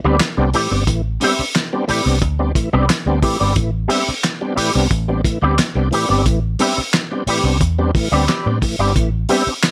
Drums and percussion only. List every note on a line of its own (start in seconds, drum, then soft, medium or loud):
0.20 snare loud
0.20 clap loud
0.20 closed hi-hat medium
0.54 open hi-hat medium
0.87 kick loud
0.87 closed hi-hat medium
1.21 open hi-hat medium
1.55 snare loud
1.55 clap medium
1.55 closed hi-hat loud
1.89 open hi-hat medium
2.22 kick loud
2.22 closed hi-hat medium
2.55 kick medium
2.55 closed hi-hat medium
2.89 snare loud
2.89 clap loud
2.89 closed hi-hat medium
3.23 kick medium
3.23 open hi-hat medium
3.56 kick loud
3.56 closed hi-hat loud
3.90 open hi-hat medium
4.24 snare loud
4.24 clap loud
4.24 closed hi-hat loud
4.57 open hi-hat medium
4.91 kick loud
4.91 closed hi-hat medium
5.25 kick loud
5.25 closed hi-hat medium
5.58 snare loud
5.58 clap loud
5.58 closed hi-hat medium
5.92 open hi-hat medium
6.26 kick loud
6.26 closed hi-hat medium
6.59 open hi-hat medium
6.93 snare loud
6.93 clap loud
6.93 closed hi-hat loud
7.27 open hi-hat medium
7.61 kick loud
7.61 closed hi-hat medium
7.95 kick medium
7.95 open hi-hat medium
8.28 snare loud
8.28 clap medium
8.28 closed hi-hat loud
8.62 kick medium
8.62 open hi-hat medium
8.96 kick loud
8.96 closed hi-hat medium
9.29 open hi-hat medium
9.63 snare loud
9.63 clap loud
9.63 closed hi-hat medium